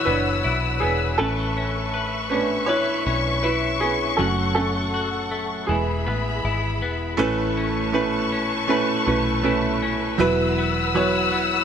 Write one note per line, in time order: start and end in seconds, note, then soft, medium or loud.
0.00 1.15 E3 medium
0.00 1.69 E3 medium
0.00 1.15 F#3 medium
0.00 0.81 B3 medium
0.00 1.21 E4 medium
0.00 1.19 F#4 medium
0.00 0.05 B4 medium
0.00 4.15 B4 medium
0.00 1.21 C#5 loud
0.00 1.16 F#5 medium
0.00 1.16 E6 medium
0.05 0.42 F#1 medium
0.05 0.81 B3 medium
0.05 0.77 D4 medium
0.05 0.83 B4 medium
0.44 0.80 B1 medium
0.44 3.43 E4 medium
0.80 1.17 E1 medium
0.80 1.57 B3 medium
0.80 0.90 B3 medium
0.80 0.89 G#4 medium
1.18 3.03 A1 loud
1.18 4.19 A3 medium
1.18 2.28 C#4 medium
1.18 2.34 A4 loud
1.18 1.93 B4 medium
1.18 4.16 E5 medium
1.18 5.65 C#6 medium
1.57 2.31 C#4 medium
1.94 2.68 B4 medium
2.29 4.15 A3 medium
2.29 3.81 B3 medium
2.29 4.14 C#4 medium
2.29 3.06 C#4 medium
2.29 2.67 D4 medium
2.29 2.69 B4 medium
2.66 3.40 E4 medium
2.66 4.19 B4 medium
2.66 3.45 C#5 loud
3.07 4.15 B1 medium
3.07 3.80 C#4 medium
3.42 4.26 E4 medium
3.42 3.79 E4 medium
3.42 3.82 B4 medium
3.80 4.17 B3 medium
3.80 4.26 C#4 medium
3.80 4.20 G#4 medium
4.17 5.65 F#1 loud
4.17 5.77 F#2 medium
4.17 5.27 F#3 medium
4.17 5.27 A3 medium
4.17 4.54 C#4 medium
4.17 4.93 F#4 medium
4.17 4.53 A4 medium
4.17 5.67 A4 medium
4.17 5.68 F#5 medium
4.55 5.30 A3 medium
4.55 5.65 C#4 medium
4.55 5.72 A4 medium
4.94 5.77 F#4 medium
5.31 5.77 A3 medium
5.67 6.07 E1 loud
5.67 6.77 E3 medium
5.67 7.19 E3 medium
5.67 6.77 G#3 soft
5.67 6.78 B3 medium
5.67 6.76 G#4 medium
5.67 7.17 G#4 medium
5.67 7.17 E5 medium
5.67 7.17 B5 medium
6.07 6.42 A1 medium
6.07 6.82 B3 medium
6.45 6.83 G#1 medium
6.45 9.45 E4 medium
6.82 7.17 E1 medium
6.82 7.57 B3 medium
7.17 9.03 A1 loud
7.17 8.27 A2 medium
7.17 7.89 A3 loud
7.17 10.20 A3 loud
7.17 7.90 C#4 loud
7.17 7.90 E4 loud
7.17 7.90 B4 loud
7.17 11.64 B4 medium
7.17 7.94 B4 medium
7.17 10.17 A5 medium
7.17 10.16 C#6 medium
7.58 8.31 C#4 medium
7.92 8.65 A3 medium
7.92 8.65 C#4 medium
7.92 8.65 E4 medium
7.92 8.65 B4 loud
7.92 8.70 B4 medium
8.32 9.06 C#4 medium
8.68 9.04 A3 medium
8.68 9.04 C#4 medium
8.68 9.04 E4 medium
8.68 9.05 B4 loud
8.68 10.21 B4 medium
9.06 10.16 B1 medium
9.06 9.42 A3 medium
9.06 9.42 C#4 medium
9.06 9.81 C#4 medium
9.06 9.43 E4 medium
9.06 9.43 B4 medium
9.43 10.15 A3 loud
9.43 10.15 C#4 medium
9.43 10.15 E4 medium
9.43 11.64 E4 medium
9.43 10.16 B4 medium
9.82 10.27 C#4 medium
10.18 11.64 E1 loud
10.18 11.64 E3 medium
10.18 10.90 F#3 loud
10.18 10.90 B3 loud
10.18 10.90 E4 loud
10.18 10.91 B4 loud
10.18 10.95 B4 medium
10.18 11.64 F#5 medium
10.18 11.64 E6 loud
10.58 11.32 B3 medium
10.94 11.64 F#3 medium
10.94 11.64 B3 medium
10.94 11.64 E4 medium
10.94 11.64 B4 medium
10.94 11.64 C#5 loud
11.32 11.64 B3 medium